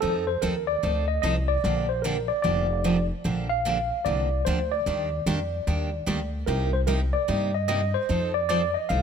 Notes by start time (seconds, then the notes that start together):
0.01 F2 F3 C4 D#4 A4
0.27 C5
0.42 D#2 F3 C4 D#4 A4 A#4
0.67 D5
0.83 D2 F3 C4 D#4 A4
1.08 D#5
1.22 C2 F3 C4 D#4 A4 D#5
1.48 D5
1.64 A#1 D3 F3 A#3 D4 G4
1.89 C5
2.02 D3 F3 A#3 D4 G4 A#4
2.28 D5
2.42 F1 D3 F3 A#3 D4 G4 D5
2.84 D3 F3 A#3 D4 G4
3.24 A#1 D3 F3 A#3 D4 G4
3.49 F5
3.65 D3 F3 A#3 D4 G4
4.05 C2 D3 F3 A#3 D4 G4 D5
4.45 D2 D3 F3 A#3 D4 G4 C5
4.72 D5
4.86 D#2 D#3 G3 A#3 D4 G4
5.26 F2 D#3 G3 A#3 D4 G4
5.67 D#2 D#3 G3 A#3 D4 G4
6.06 D2 D#3 G3 A#3 D4 G4
6.46 C2 C3 G3 A#3 D#4 G4 A#4
6.73 C5
6.87 C3 G3 A#3 D#4 G4 A#4
7.13 D5
7.28 G2 C3 G3 A#3 D#4 G4
7.54 D#5
7.68 C3 G3 A#3 D#4 G4 D#5
7.94 C5
8.09 F2 F3 C4 D#4 A4
8.34 D5
8.49 F3 C4 D#4 A4 D5
8.74 D#5
8.89 C2 F3 C4 D#4 A4 F5